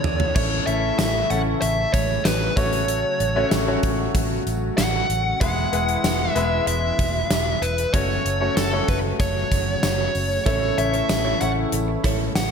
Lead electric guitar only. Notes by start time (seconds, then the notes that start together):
Already playing: C#5
0.35 C#5
0.67 E5
0.99 E5
1.31 F#5
1.62 E5
1.93 C#5
2.25 B4
2.56 C#5
4.78 F#5
5.41 F#5
6.30 E5
6.67 E5
7.62 B4
7.94 C#5
8.57 A4
8.89 B4
9.20 C#5
9.83 C#5
10.46 C#5
10.78 E5
11.10 E5
11.41 F#5
12.36 F#5